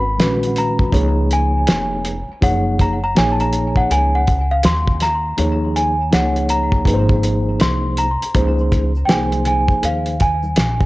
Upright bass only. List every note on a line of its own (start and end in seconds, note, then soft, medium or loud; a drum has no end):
0.00 0.16 G#1 loud
0.20 0.90 A#1 medium
0.93 1.64 C#2 loud
1.68 2.25 F1 medium
2.29 muted upright bass stroke soft
2.42 3.13 F#1 loud
3.17 3.87 A#1 medium
3.91 4.61 C#2 medium
4.65 5.35 D#2 medium
5.38 6.09 D#2 loud
6.13 6.87 C#2 medium
6.85 7.56 G#1 loud
7.61 8.18 C2 medium
8.21 muted upright bass stroke soft
8.35 9.05 C#2 loud
9.09 9.66 C2 medium
9.68 muted upright bass stroke soft
9.83 10.53 D#2 medium
10.57 10.86 A#1 medium